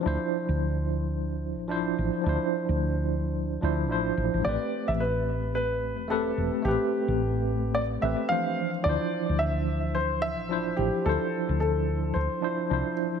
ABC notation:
X:1
M:4/4
L:1/16
Q:"Swing 16ths" 1/4=109
K:Ddor
V:1 name="Grand piano"
z16 | z16 | d3 e B4 B4 A4 | G8 d2 e2 f3 z |
d4 e4 c2 e4 G2 | A4 A4 c6 z2 |]
V:2 name="Tine electric piano"
[F,DEc]12 [F,DEc]4 | [F,DEc]8- [F,DEc]2 [F,DEc]2 [F,DEc]4 | [A,CGB]12 [A,CGB]4 | [A,CGB]8- [A,CGB]2 [A,CGB]2 [E,F,Dc]4 |
[F,DEc]12 [F,DEc]4 | [F,DEc]8- [F,DEc]2 [F,DEc]2 [F,DEc]4 |]
V:3 name="Fretless electric bass" clef=bass
D,, z2 D,,8 A,,,2 z A,,, z | D,, z2 D,,6 z D,,2 A,,, z A,,, A,,, | A,,, z2 A,,,8 E,,,2 z E,,, z | A,,, z2 A,,,6 z A,,, z4 z |
D,, z2 D,,8 A,,,2 z A,,, z | D,, z2 D,,4- D,, D,, z3 C,, z3 |]